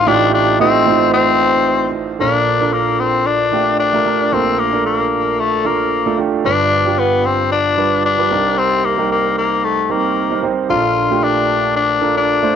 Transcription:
Already playing: A3 D#4 F4 D5
0.06 A1 A2 A3 D4 D#4 F4 G4
0.34 D4
0.60 A3 C4 D#4 F4 D#5
0.86 A3 D#4 F4 C5
1.14 C4
2.19 A#1 A#2 D4 F4 A4 A#4
2.61 D4 F4 A4 A#4
2.73 A#3
3.00 C4
3.26 D4
3.52 A3 D4 F4 G4
3.79 D4
3.93 A3 D4 F4 A#4
4.05 A3 D4 F4 A#4
4.32 A#1 A#2 C4 D4 F4 A4 A#4
4.59 A#3
4.73 D4 F4 A4 A#4
4.86 A#3
5.39 A3
5.64 A#3 D4 F4 A4 A#4
6.06 A3 D4 F4 A4
6.17 A3 D4 F4 G4
6.44 G1 G2 G3 D4 F4 B4
6.86 G3 D4 F4 G4
6.99 B3
7.25 C4
7.52 D4
7.77 G3 D4 F4 B4
8.05 D4
8.18 G3 D4 F4 B4
8.30 C2 C3 G3 C4 D#4 A#4
8.58 C4
8.85 A#3
8.98 G3 C4 D#4 A#4
9.11 A#3
9.38 A#3
9.64 A3
9.89 G3 A#3 C4 D#4 A#4
10.30 G3 C4 D#4 A#4
10.42 G3 C4 D#4 C5
10.69 A#1 A#2 D4 F4 A4 A#4
11.10 A3 D4 F4 G4
11.23 D4
11.76 D4
12.01 D4 F4 A4 A#4
12.17 D4
12.43 A3 D4 F4 C5

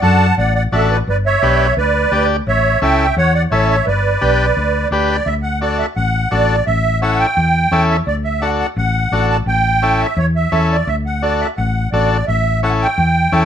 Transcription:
0.02 F#2 D4 F#4 A4 F#5 A5
0.38 A1 D5 F#5
0.55 D5 F#5
0.72 A1 D4 F#4 A4 E5
0.90 B4 D5
1.07 G1 B4 D5
1.26 C#5 E5
1.42 B1 D4 G4 B4
1.77 D2 B4 D5
2.12 D2 D4 G4 D5
2.47 A1 C#5 E5
2.82 C#2 C#4 E4 A4 E5 G5
3.17 E2 C#5 F#5
3.34 D5 F#5
3.50 A1 C#4 E4 A4 C#5 E5
3.69 C#5 E5
3.87 G1 B4 D5
4.21 B1 D4 G4 B4
4.57 D2
4.91 D2 D4 G4 B4
5.10 D5
5.26 D2 E5
5.43 F#5
5.61 D4 F#4 A4 D5
5.78 E5
5.96 A1 F#5
6.31 A1 D4 F#4 A4 D5
6.66 A1 E5
7.02 C#4 E4 A4 F#5
7.18 G5
7.37 E2
7.71 E2 C#4 E4 A4
7.90 E5
8.07 D2 D5
8.24 E5
8.41 D4 F#4 A4 F#5
8.60 F#5
8.76 A1 F#5
9.12 A1 D4 F#4 A4
9.30 A5
9.46 A1 G5
9.82 C#4 E4 A4
10.01 E5
10.17 E2 C#5
10.36 E5
10.52 E2 C#4 E4 A4
10.71 D5
10.87 D2 E5
11.06 F#5
11.22 D4 F#4 A4 D5
11.41 E5
11.57 A1 F#5
11.92 A1 D4 F#4 A4 D5
12.28 A1 E5
12.63 C#4 E4 A4 F#5
12.81 G5
12.98 E2
13.32 E2 C#4 E4 A4

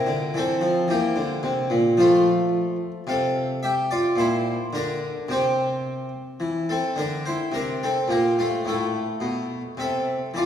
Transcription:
Already playing: E4 A#4
0.07 D3
0.34 E3 C4 A4
0.61 F3
0.88 E3 A#3 G4
1.16 D3
1.43 C3
1.70 A#2
1.97 F3 A3 F4
3.07 C3 A4 F5
3.63 G4 E5
3.91 F4 D5
4.16 A#2 E4 C5
4.73 D3 D4 A#4
5.28 C3 C4 G4
6.40 E3
6.69 C4 A4
6.96 D3 D4 A#4
7.26 E4 C5
7.52 C3 D4 A#4
7.83 C4 A4
8.08 A#2 A#3 G4
8.39 A3 F4
8.65 A2 A3 E4
9.20 B2
9.77 C3 A4 E5
10.34 E3 F4 D5

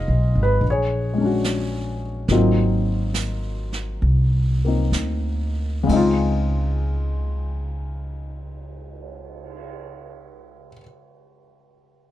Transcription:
Already playing: G#3 B3 D#4 F4 G#4 D#5 F5
0.08 B1
0.35 G#1
0.43 B4
0.61 A#1, brush sweep
0.70 G#4 C#5
1.14 G#3
1.18 C#4 D4
1.25 F#4
1.44 snare, hi-hat pedal
2.28 G#1 F#3 A#3 C4 D#4 F4, brush sweep, snare
3.14 snare, hi-hat pedal
3.73 snare
4.02 C2, brush sweep
4.65 A#3 C4 D#4
4.92 D2, snare, hi-hat pedal
5.83 C#3 G#3
5.89 C#2 C4 D#4, kick, ride
5.96 F4
6.56 cymbal swell

